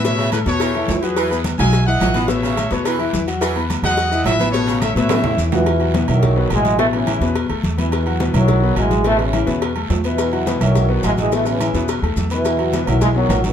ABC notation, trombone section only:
X:1
M:4/4
L:1/8
Q:1/4=213
K:E
V:1 name="Trombone section" clef=bass
z8 | z8 | z8 | z8 |
z6 z [B,,E,]- | [B,,E,]3 [D,F,]3 [E,G,]2 | [E,A,] [C,E,]3 z3 [B,,E,]- | [B,,E,]3 [D,F,]3 [E,G,]2 |
[E,A,] [C,E,]3 z3 [B,,E,]- | [B,,E,]3 [D,F,]3 [E,G,] [E,G,] | [E,A,] [C,E,]3 z3 [B,,E,]- | [B,,E,]3 [D,F,] [E,G,] [D,F,]2 [C,E,] |]